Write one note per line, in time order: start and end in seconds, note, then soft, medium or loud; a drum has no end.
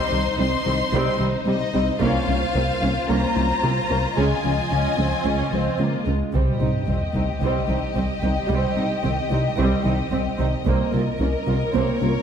0.00 0.10 G3 medium
0.00 0.10 C4 medium
0.00 1.98 D#4 soft
0.00 1.98 C5 medium
0.00 0.38 C6 medium
0.11 0.20 C2 soft
0.11 0.28 C2 medium
0.11 0.28 D#3 soft
0.11 0.19 G3 soft
0.11 0.20 C4 soft
0.38 0.47 C2 soft
0.38 0.56 C2 soft
0.38 0.47 G3 soft
0.38 0.56 C4 medium
0.38 1.19 C6 medium
0.66 0.74 C2 soft
0.66 0.83 C2 soft
0.66 0.83 D#3 soft
0.66 0.74 G3 soft
0.66 0.74 C4 soft
0.92 1.00 C2 medium
0.92 1.10 C2 medium
0.92 1.10 C3 medium
0.92 1.18 G3 medium
0.92 1.18 C4 medium
1.19 1.28 C2 soft
1.19 1.37 C2 soft
1.19 1.37 D#3 medium
1.19 1.27 G3 soft
1.19 1.27 C4 soft
1.47 1.55 C2 soft
1.47 1.64 C3 medium
1.47 1.55 G3 soft
1.47 1.64 G3 medium
1.47 1.98 D#5 medium
1.74 1.83 C2 soft
1.74 1.91 C2 medium
1.74 1.82 G3 soft
1.74 1.82 C4 soft
1.74 1.91 C4 soft
2.01 2.09 C2 medium
2.01 2.18 C2 medium
2.01 2.27 A#3 medium
2.01 2.18 A#3 medium
2.01 2.27 C#4 medium
2.01 6.10 F4 soft
2.01 4.14 C5 soft
2.01 3.10 F5 medium
2.01 taiko medium
2.28 2.36 C2 soft
2.28 2.45 C2 medium
2.28 2.37 A#3 soft
2.28 2.45 C#4 soft
2.28 2.37 C#4 soft
2.55 2.72 C2 medium
2.55 2.63 C2 soft
2.55 2.63 A#3 soft
2.55 2.63 C4 soft
2.55 2.72 A#4 medium
2.82 2.90 C2 soft
2.82 2.99 C2 soft
2.82 2.91 A#3 soft
2.82 2.91 C#4 soft
2.82 2.99 C#4 soft
2.82 taiko soft
3.09 3.26 C2 medium
3.09 3.18 C2 medium
3.09 3.35 A#3 soft
3.09 3.26 A#3 medium
3.09 3.35 C#4 soft
3.09 4.16 A#5 medium
3.36 3.53 C2 medium
3.36 3.45 C2 soft
3.36 3.44 A#3 soft
3.36 3.53 C#4 soft
3.36 3.45 C#4 soft
3.63 3.72 C2 soft
3.63 3.80 C3 soft
3.63 3.71 A#3 soft
3.63 3.71 C4 soft
3.63 3.80 F4 soft
3.90 3.98 C2 soft
3.90 4.07 C2 soft
3.90 3.98 A#3 soft
3.90 3.98 C#4 soft
3.90 4.07 A#4 soft
4.17 4.26 C#2 soft
4.17 4.34 C#2 medium
4.17 4.34 C#3 medium
4.17 4.43 G#3 medium
4.17 4.43 C#4 soft
4.17 6.14 D#5 soft
4.17 5.80 G#5 medium
4.44 4.52 C#2 soft
4.44 4.61 C#2 medium
4.44 4.61 F3 soft
4.44 4.53 G#3 soft
4.44 4.53 C#4 soft
4.71 4.79 C#2 soft
4.71 4.88 C#2 medium
4.71 4.88 C#4 soft
4.71 4.97 C#4 soft
4.98 5.15 C#2 soft
4.98 5.07 C#2 soft
4.98 5.15 F3 soft
4.98 5.25 C4 soft
5.25 5.34 C#2 soft
5.25 5.42 C#2 medium
5.25 5.42 C#3 medium
5.25 5.53 C#4 medium
5.52 5.61 C#2 soft
5.52 5.69 C#2 soft
5.52 5.69 F3 medium
5.52 5.79 C4 soft
5.79 5.87 C#2 soft
5.79 5.96 C#3 medium
5.79 5.96 G#3 soft
5.79 6.07 A#3 soft
6.07 6.15 C#2 soft
6.07 6.23 C#2 soft
6.07 6.34 G#3 soft
6.07 6.23 C#4 soft
6.33 6.41 C2 soft
6.33 6.50 C2 medium
6.33 6.42 C2 soft
6.33 6.50 C3 medium
6.33 6.59 G3 soft
6.33 6.59 C4 soft
6.33 10.63 G4 soft
6.33 11.71 D#5 soft
6.33 taiko soft
6.33 sub drop soft
6.60 6.69 C2 soft
6.60 6.70 C2 soft
6.60 6.77 C3 soft
6.60 6.77 G3 soft
6.60 6.68 C4 soft
6.60 6.69 D#4 soft
6.88 6.96 C2 soft
6.88 7.04 C2 soft
6.88 6.97 C2 soft
6.88 7.04 D#3 soft
6.88 6.97 C4 soft
7.15 7.23 C2 soft
7.15 7.31 C3 soft
7.15 7.31 G3 soft
7.15 7.24 C4 soft
7.15 7.24 D#4 soft
7.15 taiko soft
7.42 7.50 C2 soft
7.42 7.58 C2 medium
7.42 7.51 C2 soft
7.42 7.58 C3 medium
7.42 7.67 G3 soft
7.42 7.67 C4 soft
7.68 7.85 C2 soft
7.68 7.77 C2 soft
7.68 7.78 C2 soft
7.68 7.85 D#3 soft
7.68 7.77 C4 soft
7.68 7.77 D#4 soft
7.95 8.03 C2 soft
7.95 8.12 C2 soft
7.95 8.05 C2 soft
7.95 8.04 C4 soft
7.95 8.12 C4 soft
8.23 8.39 C2 soft
8.23 8.31 C2 soft
8.23 8.32 C2 soft
8.23 8.39 D#3 soft
8.23 8.31 C4 soft
8.23 8.31 D#4 soft
8.50 8.66 C2 medium
8.50 8.58 C2 soft
8.50 8.59 C2 medium
8.50 8.66 C3 medium
8.50 8.75 G3 soft
8.50 8.75 C4 soft
8.77 8.85 C2 soft
8.77 8.93 C3 soft
8.77 8.93 G3 soft
8.77 8.85 C4 soft
8.77 8.85 D#4 soft
9.04 9.12 C2 soft
9.04 9.21 C2 soft
9.04 9.13 C2 soft
9.04 9.20 D#3 medium
9.04 9.12 C4 soft
9.31 9.39 C2 soft
9.31 9.48 C3 soft
9.31 9.47 G3 soft
9.31 9.40 C4 soft
9.31 9.39 D#4 soft
9.58 9.66 C2 medium
9.58 9.75 C2 medium
9.58 9.75 C3 medium
9.58 9.84 G3 medium
9.58 9.84 C4 medium
9.85 9.93 C2 soft
9.85 10.02 C2 soft
9.85 10.02 D#3 medium
9.85 9.93 C4 soft
9.85 9.93 D#4 soft
10.12 10.20 C2 soft
10.12 10.29 C2 medium
10.12 10.20 C4 soft
10.12 10.28 C4 soft
10.39 10.47 C2 soft
10.39 10.56 C2 soft
10.39 10.48 C2 soft
10.39 10.56 D#3 soft
10.39 10.47 C4 soft
10.39 10.47 D#4 soft
10.66 10.74 C2 medium
10.66 10.83 C2 medium
10.66 10.75 C2 medium
10.66 10.91 A#3 medium
10.66 10.82 A#3 medium
10.66 10.91 C4 soft
10.66 12.22 A#4 medium
10.66 taiko medium
10.93 11.01 C2 soft
10.93 11.02 C2 soft
10.93 11.10 C3 medium
10.93 11.01 A#3 soft
10.93 11.01 F4 soft
10.93 11.10 F4 medium
11.20 11.28 C2 soft
11.20 11.36 C2 soft
11.20 11.29 C2 soft
11.20 11.28 A#3 soft
11.20 11.28 C#4 soft
11.20 11.36 C#4 medium
11.47 11.55 C2 soft
11.47 11.56 C2 soft
11.47 11.64 C3 soft
11.47 11.56 A#3 soft
11.47 11.64 F4 soft
11.47 11.56 F4 soft
11.74 11.91 C2 medium
11.74 11.82 C2 medium
11.74 11.83 C2 medium
11.74 11.90 A#3 medium
11.74 12.00 A#3 medium
11.74 12.00 C4 soft
11.74 12.22 C#5 soft
12.01 12.18 C2 medium
12.01 12.10 C2 soft
12.01 12.10 A#3 soft
12.01 12.18 C#4 soft
12.01 12.10 F4 soft